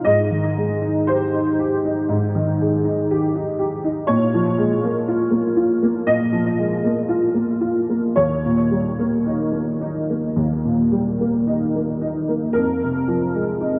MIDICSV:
0, 0, Header, 1, 2, 480
1, 0, Start_track
1, 0, Tempo, 1020408
1, 17, Time_signature, 4, 2, 24, 8
1, 1457, Tempo, 1000000
1, 3377, Tempo, 1083032
1, 4337, Tempo, 1109057
1, 5297, Tempo, 1050788
1, 6352, End_track
2, 0, Start_track
2, 0, Title_t, "Upright piano"
2, 0, Program_c, 0, 0
2, 0, Control_c, 0, 64, 127
2, 21, Note_on_c, 0, 75, 70
2, 26, Control_c, 0, 64, 0
2, 27, Note_on_c, 0, 44, 49
2, 115, Control_c, 0, 64, 127
2, 143, Note_on_c, 0, 51, 33
2, 268, Note_on_c, 0, 56, 37
2, 334, Note_off_c, 0, 51, 0
2, 382, Note_on_c, 0, 63, 36
2, 456, Note_off_c, 0, 56, 0
2, 501, Note_off_c, 0, 75, 0
2, 504, Note_on_c, 0, 72, 58
2, 510, Note_on_c, 0, 67, 39
2, 573, Note_off_c, 0, 63, 0
2, 631, Note_on_c, 0, 63, 34
2, 697, Note_off_c, 0, 67, 0
2, 747, Note_on_c, 0, 67, 42
2, 817, Note_off_c, 0, 63, 0
2, 870, Note_on_c, 0, 63, 38
2, 936, Note_off_c, 0, 67, 0
2, 966, Note_off_c, 0, 44, 0
2, 981, Note_on_c, 0, 44, 45
2, 1056, Note_off_c, 0, 63, 0
2, 1106, Note_on_c, 0, 51, 41
2, 1225, Note_on_c, 0, 56, 37
2, 1294, Note_off_c, 0, 51, 0
2, 1335, Note_on_c, 0, 63, 40
2, 1412, Note_off_c, 0, 56, 0
2, 1462, Note_on_c, 0, 67, 43
2, 1527, Note_off_c, 0, 63, 0
2, 1579, Note_on_c, 0, 63, 39
2, 1651, Note_off_c, 0, 67, 0
2, 1692, Note_on_c, 0, 67, 40
2, 1698, Note_off_c, 0, 72, 0
2, 1768, Note_off_c, 0, 63, 0
2, 1813, Note_on_c, 0, 63, 41
2, 1883, Note_off_c, 0, 67, 0
2, 1914, Note_off_c, 0, 44, 0
2, 1924, Note_on_c, 0, 73, 78
2, 1931, Note_on_c, 0, 46, 59
2, 1932, Note_off_c, 0, 63, 0
2, 1939, Control_c, 0, 64, 0
2, 2016, Control_c, 0, 64, 127
2, 2053, Note_on_c, 0, 53, 40
2, 2167, Note_on_c, 0, 56, 45
2, 2243, Note_off_c, 0, 53, 0
2, 2292, Note_on_c, 0, 58, 40
2, 2359, Note_off_c, 0, 56, 0
2, 2409, Note_on_c, 0, 65, 46
2, 2480, Note_off_c, 0, 58, 0
2, 2517, Note_on_c, 0, 58, 43
2, 2599, Note_off_c, 0, 65, 0
2, 2641, Note_on_c, 0, 65, 43
2, 2713, Note_off_c, 0, 58, 0
2, 2766, Note_on_c, 0, 58, 44
2, 2835, Note_off_c, 0, 65, 0
2, 2866, Note_off_c, 0, 46, 0
2, 2882, Note_off_c, 0, 73, 0
2, 2883, Note_on_c, 0, 75, 75
2, 2887, Note_on_c, 0, 46, 45
2, 2959, Note_off_c, 0, 58, 0
2, 3006, Note_on_c, 0, 53, 43
2, 3130, Note_on_c, 0, 56, 41
2, 3202, Note_off_c, 0, 53, 0
2, 3253, Note_on_c, 0, 58, 40
2, 3327, Note_off_c, 0, 56, 0
2, 3372, Note_on_c, 0, 65, 41
2, 3447, Note_off_c, 0, 58, 0
2, 3486, Note_on_c, 0, 58, 36
2, 3562, Note_off_c, 0, 65, 0
2, 3604, Note_on_c, 0, 65, 37
2, 3680, Note_off_c, 0, 58, 0
2, 3730, Note_on_c, 0, 58, 34
2, 3800, Note_off_c, 0, 65, 0
2, 3835, Note_off_c, 0, 46, 0
2, 3847, Note_on_c, 0, 73, 66
2, 3851, Note_off_c, 0, 75, 0
2, 3851, Note_on_c, 0, 39, 49
2, 3852, Note_off_c, 0, 58, 0
2, 3861, Control_c, 0, 64, 0
2, 3953, Control_c, 0, 64, 127
2, 3977, Note_on_c, 0, 46, 33
2, 4091, Note_on_c, 0, 55, 34
2, 4169, Note_off_c, 0, 46, 0
2, 4217, Note_on_c, 0, 58, 34
2, 4286, Note_off_c, 0, 55, 0
2, 4336, Note_on_c, 0, 63, 37
2, 4409, Note_off_c, 0, 58, 0
2, 4448, Note_on_c, 0, 58, 32
2, 4529, Note_off_c, 0, 63, 0
2, 4575, Note_on_c, 0, 63, 36
2, 4647, Note_off_c, 0, 58, 0
2, 4699, Note_on_c, 0, 58, 30
2, 4771, Note_off_c, 0, 63, 0
2, 4803, Note_off_c, 0, 39, 0
2, 4812, Note_on_c, 0, 39, 39
2, 4893, Note_off_c, 0, 58, 0
2, 4936, Note_on_c, 0, 46, 32
2, 5052, Note_on_c, 0, 55, 32
2, 5129, Note_off_c, 0, 46, 0
2, 5177, Note_on_c, 0, 58, 33
2, 5245, Note_off_c, 0, 55, 0
2, 5292, Note_on_c, 0, 63, 36
2, 5370, Note_off_c, 0, 58, 0
2, 5421, Note_on_c, 0, 58, 32
2, 5493, Note_off_c, 0, 63, 0
2, 5540, Note_on_c, 0, 63, 35
2, 5542, Note_off_c, 0, 73, 0
2, 5620, Note_off_c, 0, 58, 0
2, 5664, Note_on_c, 0, 58, 32
2, 5738, Note_off_c, 0, 63, 0
2, 5765, Note_off_c, 0, 39, 0
2, 5776, Note_on_c, 0, 70, 66
2, 5785, Note_on_c, 0, 41, 46
2, 5786, Note_off_c, 0, 58, 0
2, 5795, Control_c, 0, 64, 0
2, 5879, Control_c, 0, 64, 127
2, 5915, Note_on_c, 0, 48, 30
2, 6027, Note_on_c, 0, 53, 33
2, 6099, Note_off_c, 0, 48, 0
2, 6149, Note_on_c, 0, 56, 37
2, 6214, Note_off_c, 0, 53, 0
2, 6267, Note_on_c, 0, 63, 36
2, 6333, Note_off_c, 0, 56, 0
2, 6352, Note_off_c, 0, 41, 0
2, 6352, Note_off_c, 0, 63, 0
2, 6352, Note_off_c, 0, 70, 0
2, 6352, End_track
0, 0, End_of_file